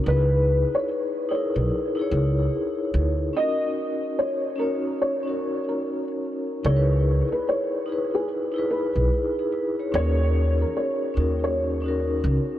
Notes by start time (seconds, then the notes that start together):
0.04 C#2 D#4 E4
0.08 G#4 B4
0.75 C#5
1.29 D#4 E4 G#4 C#5
1.35 A#4
1.56 B1
1.95 D#4 E4
1.99 G#4 C#5
2.11 C#2
2.94 D2
3.33 C#4 D#4 F#4 D#5
3.39 A#4
4.19 C#5
4.55 C#4 D#4 A#4
4.60 F#4 C#5
5.02 C#5
5.23 C#4 D#4
5.28 F#4 A#4
5.69 A#4
6.64 C#2 D#4 E4 C#5
6.68 G#4 A#4
6.76 B4
7.32 B4
7.49 C#5
7.86 D#4 E4 G#4
7.92 B4
8.14 G#4
8.52 D#4 E4
8.56 G#4 B4
8.71 B4
8.96 B1
9.39 D#4 G#4
9.52 E4 B4
9.79 G#4 C#5
9.92 D#2 C#4 D#4 C#5
9.96 F#4 A#4
10.62 A#4
10.77 C#5
11.14 D#2 C#4 D#4 F#4
11.20 A#4
11.44 C#5
11.82 C#4 D#4
11.86 F#4 A#4
12.24 C#2